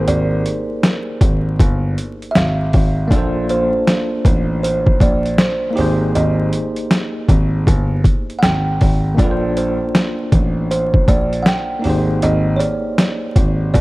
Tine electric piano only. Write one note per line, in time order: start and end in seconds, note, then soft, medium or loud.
0.00 2.66 A#3 medium
0.00 2.67 D#4 soft
0.00 2.69 G4 medium
0.00 2.70 G#4 medium
0.00 2.74 C5 medium
3.08 5.69 A#3 medium
3.08 5.72 D4 medium
3.13 5.74 F4 medium
3.13 5.75 A4 medium
3.18 5.76 C5 medium
5.70 8.73 A#3 medium
5.70 8.75 D#4 medium
5.76 8.76 G4 medium
5.76 8.77 G#4 medium
5.81 8.78 C5 medium
9.15 11.78 A#3 medium
9.15 11.80 D4 medium
9.20 11.81 F4 medium
9.20 11.82 A4 medium
9.24 9.29 B4 medium
9.31 11.87 C5 medium
11.79 13.81 A#3 medium
11.79 13.81 D#4 medium
11.84 13.81 G4 medium
11.84 13.81 G#4 medium
11.89 13.81 C5 medium